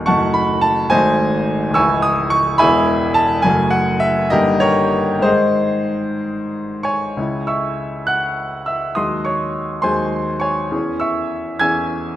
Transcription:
Already playing: D#1 D#2 A#3 D#4 A#4 D5 F5
0.06 F#1 F#2 F#3 A3 D#4 F#5 A5 C#6
0.34 B5
0.61 A5
0.90 G#1 G#2 F#3 A3 D#4 C5 D#5 G#5
1.69 C#1
1.74 C#2 E3 G#3 E4 G#5 C#6 E6
2.02 D#6
2.30 C#6
2.58 E1 E2 E3 G#3 G#4 E5 G#5 B5
3.14 A5
3.42 F#1 F#2 C#3 A3 F#4 G#5
3.70 F#5
4.00 E5
4.30 G1 G2 D#3 A#3 D#4 G4 A#4 D#5
4.60 G4 A#4 C#5
5.19 G#2 D#3 G#3 C5
5.24 D#4 G#4
6.83 C#5 G#5 C#6
7.17 C#2 C#3 G#3 E4
7.47 E5 C#6 E6
8.07 F#5 F#6
8.66 E5 E6
8.95 D#2 F#3 G#3 G#4 D#5 C6 D#6
9.25 C#5 C#6
9.82 D#2 F#3 G#3 G#4 C5 G#5 C6
10.40 C#5 G#5 C#6
10.71 E2 E3 C#4 G#4
11.00 E5 C#6 E6
11.59 E2 E3 C#4 G#4 G#5 E6 G#6

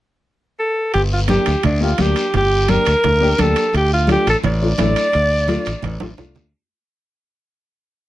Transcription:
0.59 A4
0.94 G1 G4, high conga, high timbale, long guiro
1.13 F4
1.28 A#3 D4 G4, high conga, high timbale, short guiro
1.46 D2, high timbale, short guiro
1.63 D2 D4, high conga, low conga, high timbale, long guiro
1.80 A#3 D4 F4 G4
1.98 D2 A#3 D4 G4, high conga, high timbale, short guiro
2.16 high timbale, short guiro
2.34 G1 G4, high conga, low conga, high timbale, long guiro
2.68 A#3 D4 G4 A#4, high conga, high timbale, short guiro
2.85 D2, high timbale, short guiro
3.03 D2, high conga, low conga, high timbale, long guiro
3.21 A#3 D4 G4
3.38 D2 A#3 D4 G4 A4, high conga, high timbale, short guiro
3.56 high timbale, short guiro
3.73 D2 G4, high conga, high timbale, long guiro
3.93 F4
4.07 A3 D4 F4, high conga, high timbale, short guiro
4.11 G4
4.27 A1 A4, high timbale, short guiro
4.43 A1 D5, high conga, low conga, high timbale, long guiro
4.62 A3 D4 F4
4.78 A1 A3 D4 E4, high conga, high timbale, low timbale, short guiro
4.96 high timbale, short guiro
5.13 D2, high conga, high timbale, long guiro
5.48 A3 D4 F4, high conga, high timbale, short guiro
5.65 A1, high timbale, short guiro
5.82 A1, high conga, low conga, high timbale, long guiro
6.00 A1 A3 D4 F4, high conga, high timbale
6.17 A3 D4 F4, low conga, high timbale, short guiro
6.35 D2, low conga, low timbale, short guiro

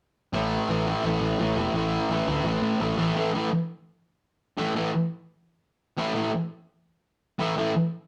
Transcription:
0.33 A1 A2 E3 A3
0.69 A1 A2 E3 A3
0.87 A2 E3 A3
1.04 A1 A2 E3 A3
1.21 A1
1.39 A1 A2 E3 A3
1.57 E1 A2 E3 A3
1.74 A1 A2 E3 A3
2.09 A1 A2 E3 A3
2.27 D2 A2 E3 A3
2.44 A1 A2 E3 A3
2.62 A2
2.80 A1 A2 E3 A3
2.97 A1 A2 E3 A3
3.15 A2 E3 A3
3.34 A2 E3 A3
4.57 A2 E3 A3
4.75 A2 E3 A3
5.98 A2 E3 A3
6.15 A2 E3 A3
7.39 A2 E3 A3
7.57 A2 E3 A3

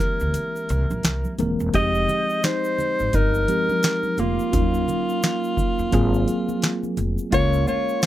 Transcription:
Already playing: E3 G#3 A#3 C4 E4 G4 A#4
0.00 snare, shaker
0.20 D2, shaker
0.34 closed hi-hat, shaker
0.56 shaker
0.69 C2, closed hi-hat, shaker
0.90 A#1, high conga, shaker
1.03 C2, snare, closed hi-hat, shaker
1.24 high conga, shaker
1.39 D#1 E3 G#3 A#3 C4 A#4, closed hi-hat, low conga, shaker
1.60 E1, shaker
1.73 F1 F3 G#3 C4 D#4 G4 D#5, kick, closed hi-hat, shaker
1.95 shaker
2.08 low conga, shaker
2.29 shaker
2.43 D#4 C5, snare, closed hi-hat, shaker
2.64 shaker
2.78 low conga, shaker
2.99 G#1, shaker
3.13 G1 D#4 A#4, kick, closed hi-hat, shaker
3.34 shaker
3.48 F3 G#3 C4 D#4 G4, closed hi-hat, shaker
3.69 high conga, shaker
3.83 snare, closed hi-hat, shaker
4.03 high conga, shaker
4.18 F1 A#3 F4, closed hi-hat, low conga, shaker
4.39 shaker
4.52 D#2 A#3 C#4 D#4 F4, kick, closed hi-hat, shaker
4.61 F#3
4.74 shaker
4.88 low conga, shaker
5.09 shaker
5.23 snare, closed hi-hat, shaker
5.44 shaker
5.57 kick, low conga, shaker
5.79 F2, shaker
5.92 G#1 F#3 A#3 C4 F4 G#4, kick, closed hi-hat, shaker
6.14 shaker
6.28 closed hi-hat, shaker
6.49 high conga, shaker
6.62 snare, closed hi-hat, shaker
6.83 high conga, shaker
6.97 F1, closed hi-hat, low conga, shaker
7.18 shaker
7.31 C#2 G#3 A#3 C#4 F4 A#4 C#5, kick, closed hi-hat, shaker
7.53 shaker
7.67 F4 C#5, low conga, shaker
7.89 shaker
8.02 F4, snare, shaker

